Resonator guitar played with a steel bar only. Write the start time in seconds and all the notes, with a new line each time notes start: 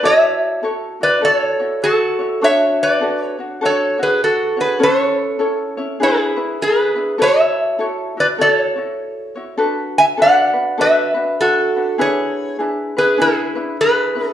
0.05 C#5 E5
1.03 B4 D5
1.25 A4 D5
1.36 C#5
1.84 F#4 A4
2.44 C#5 E5
2.83 B4 D5
3.22 C#5
3.65 A4 C#5
4.03 G#4 B4
4.24 F#4 A4
4.60 G#4 B4
4.83 A4 C#5
6.03 E4 G#4
6.62 G#4 B4
7.22 C#5 E5
8.20 B4 D5
8.41 A4 D5
8.52 C#5
9.98 E5 G#5
10.22 D5 F#5
10.81 B4 E5
11.41 F#4 A4
12.01 G#4 C#5
12.98 G#4 B4
13.21 E4 G#4
13.81 G#4 B4
14.28 A4